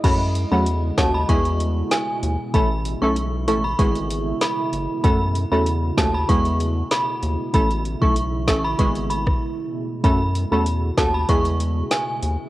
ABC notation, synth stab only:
X:1
M:4/4
L:1/16
Q:1/4=96
K:E
V:1 name="Synth stab"
[F,A,CF] z2 [F,A,CF] z2 [F,A,CF] z [G,B,EG]6- [G,B,EG] z | [A,CEA] z2 [A,CEA] z2 [A,CEA] z [G,B,EG]6- [G,B,EG] z | [A,CFA] z2 [A,CFA] z2 [A,CFA] z [G,B,EG]6- [G,B,EG] z | [A,CEA] z2 [A,CEA] z2 [A,CEA] z [G,B,EG]4 z4 |
[A,CFA] z2 [A,CFA] z2 [A,CFA] z [G,B,EG]6- [G,B,EG] z |]